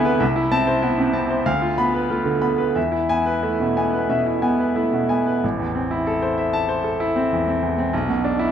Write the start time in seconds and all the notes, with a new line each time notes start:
Already playing: D2 C3 D3 A3 B3 E4 B4 E5 G#5
0.05 B4
0.20 C2 E5
0.36 E4
0.52 C4 A5
0.67 C5
0.82 B3 E4
0.98 C3
1.13 C4 A5
1.30 C5
1.46 D2 F5
1.62 F4
1.78 B3 B5
1.94 B4
2.10 A3 F4
2.25 D3
2.41 B3 B5
2.58 B4
2.75 E2 E5
2.92 E4
3.09 B3 G#5
3.26 B4
3.43 A3 E4
3.60 B2
3.77 B3 G#5
3.93 B4
4.09 B2 E5
4.26 E4
4.42 B3 G#5
4.59 B4
4.76 A3 E4
4.92 B2
5.09 B3 G#5
5.26 B4
5.44 A1
5.59 E2
5.75 C4
5.91 E4
6.07 A4
6.22 C5
6.38 E5
6.53 A5
6.69 C5
6.84 A4
7.00 E4
7.16 C4
7.32 E2
7.48 C4
7.63 E2
7.78 C4
7.93 B1
8.09 B2
8.24 D4
8.39 E4